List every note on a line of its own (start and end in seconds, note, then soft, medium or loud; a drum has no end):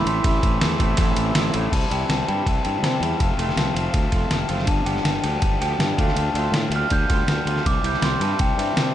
0.06 0.20 A1 medium
0.06 0.24 A2 medium
0.06 0.24 E3 medium
0.06 0.25 A3 medium
0.06 0.24 C4 medium
0.06 0.25 E4 medium
0.06 1.31 C6 medium
0.06 ride medium
0.24 0.38 A1 loud
0.24 0.61 A2 loud
0.24 0.62 E3 loud
0.24 0.62 A3 medium
0.24 0.62 C4 loud
0.24 0.63 E4 loud
0.24 kick loud
0.24 ride medium
0.43 0.57 A1 medium
0.43 kick medium
0.43 ride medium
0.61 0.75 E2 medium
0.61 0.78 A2 medium
0.61 0.79 E3 medium
0.61 0.79 A3 medium
0.61 0.79 C4 medium
0.61 0.79 E4 medium
0.61 snare loud
0.61 ride medium
0.79 0.94 A1 medium
0.79 0.97 A2 medium
0.79 0.97 E3 medium
0.79 0.98 A3 loud
0.79 0.98 C4 medium
0.79 0.99 E4 loud
0.79 kick medium
0.79 ride medium
0.97 1.12 A1 loud
0.97 1.34 A2 loud
0.97 1.34 E3 loud
0.97 1.35 A3 medium
0.97 1.35 C4 medium
0.97 1.35 E4 loud
0.97 kick loud
0.97 ride loud
1.17 1.31 A1 medium
1.17 ride medium
1.35 1.49 A1 medium
1.35 1.52 A2 medium
1.35 1.53 E3 medium
1.35 1.53 A3 medium
1.35 1.53 C4 medium
1.35 1.54 E4 medium
1.35 snare loud
1.35 ride loud
1.54 1.68 A1 medium
1.54 1.71 A2 medium
1.54 1.71 E3 medium
1.54 1.71 A3 medium
1.54 1.71 C4 medium
1.54 1.71 E4 medium
1.54 ride medium
1.72 1.84 C2 medium
1.72 2.27 C3 medium
1.72 2.09 E3 medium
1.72 2.10 G3 medium
1.72 2.11 C4 medium
1.72 2.10 E4 medium
1.72 1.90 A5 medium
1.72 kick medium
1.72 crash medium
1.72 ride medium
1.90 2.03 C2 medium
1.90 2.15 E3 medium
1.90 2.14 G3 medium
1.90 2.14 C4 medium
1.90 2.14 E4 medium
1.90 2.09 G5 medium
1.90 ride medium
2.09 2.21 C2 medium
2.09 2.46 E3 medium
2.09 2.30 G3 medium
2.09 2.29 C4 medium
2.09 2.27 E4 medium
2.09 2.28 A5 medium
2.09 snare medium
2.09 ride medium
2.28 2.40 G2 medium
2.28 2.52 E3 medium
2.28 2.48 G3 medium
2.28 2.48 C4 medium
2.28 2.47 E4 medium
2.28 2.46 G5 medium
2.28 ride medium
2.46 2.58 C2 medium
2.46 2.82 E3 medium
2.46 2.83 G3 medium
2.46 2.82 C4 medium
2.46 2.83 E4 medium
2.46 2.64 A5 medium
2.46 kick loud
2.46 ride medium
2.63 2.77 G2 medium
2.63 2.88 E3 medium
2.63 2.88 G3 medium
2.63 2.88 C4 medium
2.63 2.88 E4 medium
2.63 3.37 G5 medium
2.63 ride medium
2.82 3.18 C3 medium
2.82 2.95 C3 medium
2.82 3.19 E3 medium
2.82 3.04 G3 medium
2.82 3.02 C4 medium
2.82 3.01 E4 medium
2.82 snare medium
2.82 ride medium
3.00 3.13 E2 medium
3.00 3.20 E3 medium
3.00 3.20 C4 medium
3.00 3.19 E4 medium
3.00 ride medium
3.04 3.20 G3 soft
3.19 3.32 F1 medium
3.19 3.75 F2 medium
3.19 3.75 C3 medium
3.19 3.56 F3 medium
3.19 3.55 A3 medium
3.19 3.56 C4 medium
3.19 3.57 F4 medium
3.19 kick medium
3.19 ride medium
3.38 3.50 F1 medium
3.38 3.63 F3 medium
3.38 3.63 A3 medium
3.38 3.62 C4 medium
3.38 3.62 F4 medium
3.38 ride medium
3.49 snare soft
3.56 3.69 C2 medium
3.56 3.75 F3 medium
3.56 3.74 A3 medium
3.56 3.73 C4 medium
3.56 3.73 F4 medium
3.56 snare medium
3.56 ride medium
3.74 3.87 F1 medium
3.74 3.92 F3 medium
3.74 3.91 A3 medium
3.74 3.92 C4 medium
3.74 3.94 F4 medium
3.74 ride medium
3.92 4.06 D2 medium
3.92 4.30 F3 medium
3.92 4.29 A3 medium
3.92 4.29 C4 medium
3.92 4.31 F4 medium
3.92 kick loud
3.92 ride medium
4.11 4.25 F1 medium
4.11 4.37 F3 medium
4.11 4.37 A3 medium
4.11 4.36 C4 medium
4.11 4.36 F4 medium
4.11 kick medium
4.11 ride medium
4.29 4.43 F1 medium
4.29 4.66 F2 medium
4.29 4.66 C3 medium
4.29 4.50 F3 medium
4.29 4.48 A3 medium
4.29 4.48 C4 medium
4.29 4.48 F4 medium
4.29 snare medium
4.29 ride medium
4.48 4.67 F#1 medium
4.48 4.66 F3 medium
4.48 4.67 A3 medium
4.48 4.67 C4 medium
4.48 4.67 F4 medium
4.48 ride medium
4.58 snare soft
4.66 4.80 G1 medium
4.66 5.23 G2 medium
4.66 5.23 D3 medium
4.66 5.04 F3 medium
4.66 5.04 G3 loud
4.66 5.06 B3 medium
4.66 5.05 G4 medium
4.66 4.86 A5 medium
4.66 kick loud
4.66 ride medium
4.85 4.98 G1 medium
4.85 5.11 F3 medium
4.85 5.11 G3 medium
4.85 5.11 B3 medium
4.85 5.10 G4 medium
4.85 5.05 G5 medium
4.85 ride medium
4.96 snare soft
5.04 5.17 G1 medium
5.04 5.25 F3 medium
5.04 5.24 G3 medium
5.04 5.23 B3 medium
5.04 5.22 G4 medium
5.04 5.23 A5 medium
5.04 snare medium
5.04 ride medium
5.23 5.36 D2 medium
5.23 5.40 F3 medium
5.23 5.41 G3 medium
5.23 5.42 B3 medium
5.23 5.42 G4 medium
5.23 5.41 G5 medium
5.23 ride medium
5.40 5.55 G1 medium
5.40 5.78 F3 medium
5.40 5.79 G3 medium
5.40 5.79 B3 medium
5.40 5.79 G4 medium
5.40 5.59 A5 medium
5.40 kick loud
5.40 ride medium
5.60 5.73 D2 medium
5.60 5.86 F3 medium
5.60 5.86 G3 medium
5.60 5.85 B3 medium
5.60 5.86 G4 medium
5.60 6.33 G5 medium
5.60 ride medium
5.78 5.97 G2 medium
5.78 5.91 G2 medium
5.78 5.97 D3 medium
5.78 5.97 F3 medium
5.78 5.97 G3 medium
5.78 5.98 B3 medium
5.78 5.97 G4 medium
5.78 snare loud
5.78 ride medium
5.97 6.11 D2 medium
5.97 6.15 D3 medium
5.97 6.16 A3 medium
5.97 6.16 D4 medium
5.97 6.17 F4 medium
5.97 kick medium
5.97 ride medium
6.08 snare soft
6.16 6.29 D2 medium
6.16 6.52 D3 medium
6.16 6.53 A3 medium
6.16 6.54 D4 medium
6.16 6.54 F4 loud
6.16 ride medium
6.34 6.47 D2 medium
6.34 6.60 D3 medium
6.34 6.60 A3 medium
6.34 6.60 D4 medium
6.34 6.59 F4 medium
6.34 ride medium
6.52 6.65 A2 medium
6.52 6.89 D3 medium
6.52 6.73 A3 medium
6.52 6.72 D4 medium
6.52 6.71 F4 medium
6.52 snare loud
6.52 ride medium
6.70 6.83 D2 medium
6.70 6.92 D3 medium
6.70 6.91 D4 medium
6.70 6.90 F4 medium
6.70 ride medium
6.75 6.91 A3 medium
6.75 6.92 F6 medium
6.90 7.04 D2 medium
6.90 7.27 D3 medium
6.90 7.29 G3 loud
6.90 7.28 B3 loud
6.90 7.29 F4 medium
6.90 7.64 G6 medium
6.90 kick loud
6.90 ride medium
7.09 7.22 D2 medium
7.09 7.34 D3 medium
7.09 7.34 G3 medium
7.09 7.34 B3 medium
7.09 7.34 F4 loud
7.09 kick medium
7.09 ride medium
7.27 7.40 D2 medium
7.27 7.64 D3 medium
7.27 7.49 G3 medium
7.27 7.47 B3 medium
7.27 7.46 F4 loud
7.27 snare loud
7.27 ride medium
7.46 7.58 D2 medium
7.46 7.66 D3 medium
7.46 7.65 B3 medium
7.46 7.65 F4 medium
7.46 ride medium
7.50 7.65 G3 medium
7.56 snare soft
7.65 7.78 C2 medium
7.65 8.21 C3 medium
7.65 8.01 E3 medium
7.65 8.03 G3 medium
7.65 8.03 C4 loud
7.65 8.03 E4 loud
7.65 7.84 D6 medium
7.65 kick loud
7.65 ride medium
7.83 7.96 C2 medium
7.83 8.09 E3 medium
7.83 8.08 G3 medium
7.83 8.08 C4 medium
7.83 8.08 E4 medium
7.83 8.03 G6 medium
7.83 ride medium
7.93 snare soft
8.02 8.15 C2 medium
8.02 8.37 E3 medium
8.02 8.22 G3 medium
8.02 8.21 C4 medium
8.02 8.19 E4 medium
8.02 8.22 C6 medium
8.02 snare loud
8.02 ride medium
8.20 8.33 G2 medium
8.20 8.46 E3 medium
8.20 8.38 G3 medium
8.20 8.38 C4 medium
8.20 8.39 E4 medium
8.20 8.40 A5 medium
8.20 ride medium
8.38 8.52 C2 medium
8.38 8.76 E3 medium
8.38 8.77 G3 medium
8.38 8.77 C4 medium
8.38 8.78 E4 medium
8.38 8.59 G5 loud
8.38 kick loud
8.38 ride medium
8.57 8.70 G2 medium
8.57 8.83 E3 medium
8.57 8.83 G3 medium
8.57 8.83 C4 medium
8.57 8.83 E4 medium
8.57 ride medium
8.77 8.89 C3 medium
8.77 8.94 C3 medium
8.77 8.94 E3 medium
8.77 8.94 G3 loud
8.77 8.94 C4 loud
8.77 8.94 E4 loud
8.77 snare loud
8.77 ride medium